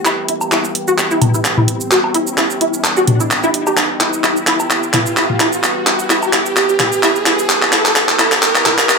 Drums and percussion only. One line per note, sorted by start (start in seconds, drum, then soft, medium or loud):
0.05 clap medium
0.05 shaker soft
0.28 closed hi-hat medium
0.41 low woodblock soft
0.41 shaker soft
0.52 clap medium
0.52 shaker soft
0.64 shaker soft
0.75 closed hi-hat medium
0.88 shaker soft
0.98 clap medium
0.98 shaker medium
1.11 shaker soft
1.22 closed hi-hat loud
1.22 mid tom medium
1.22 low woodblock soft
1.34 shaker soft
1.45 clap medium
1.45 shaker medium
1.57 mid tom medium
1.68 closed hi-hat loud
1.81 shaker soft
1.91 clap medium
1.91 shaker soft
2.04 low woodblock soft
2.14 closed hi-hat medium
2.27 shaker soft
2.38 clap medium
2.38 shaker soft
2.50 shaker soft
2.61 closed hi-hat medium
2.74 shaker soft
2.84 clap medium
2.84 low woodblock soft
2.84 shaker soft
2.97 shaker soft
3.07 closed hi-hat loud
3.07 mid tom medium
3.20 shaker soft
3.31 clap medium
3.31 shaker soft
3.43 shaker soft
3.54 closed hi-hat medium
3.67 low woodblock soft
3.67 shaker soft
3.77 clap medium
3.77 low woodblock soft
3.77 shaker soft
4.01 clap medium
4.01 closed hi-hat medium
4.13 shaker soft
4.24 clap medium
4.24 shaker soft
4.37 shaker soft
4.47 clap medium
4.47 closed hi-hat medium
4.60 low woodblock soft
4.60 shaker soft
4.70 clap medium
4.70 shaker soft
4.83 shaker soft
4.94 clap medium
4.94 closed hi-hat medium
4.94 mid tom medium
5.06 shaker soft
5.17 clap medium
5.17 shaker soft
5.30 mid tom medium
5.40 clap medium
5.40 closed hi-hat medium
5.40 low woodblock soft
5.53 shaker soft
5.63 clap medium
5.63 shaker medium
5.87 clap medium
5.87 closed hi-hat medium
5.99 shaker soft
6.10 clap medium
6.10 shaker soft
6.23 low woodblock soft
6.23 shaker soft
6.33 clap medium
6.33 closed hi-hat medium
6.46 shaker soft
6.56 clap medium
6.56 shaker soft
6.69 shaker soft
6.80 clap medium
6.80 closed hi-hat medium
6.80 mid tom medium
6.92 shaker soft
7.03 clap medium
7.03 low woodblock soft
7.03 shaker medium
7.16 shaker soft
7.26 clap medium
7.26 closed hi-hat medium
7.39 shaker soft
7.49 clap medium
7.49 shaker medium
7.62 clap medium
7.73 clap medium
7.73 closed hi-hat medium
7.85 clap medium
7.85 low woodblock soft
7.85 shaker soft
7.96 clap medium
7.96 shaker medium
8.09 clap medium
8.09 shaker soft
8.19 clap medium
8.19 closed hi-hat medium
8.32 clap medium
8.32 shaker soft
8.42 clap medium
8.42 shaker medium
8.55 clap medium
8.55 shaker soft
8.66 clap loud
8.66 closed hi-hat medium
8.66 mid tom medium
8.66 low woodblock soft
8.78 clap medium
8.78 shaker soft
8.89 clap loud
8.89 shaker medium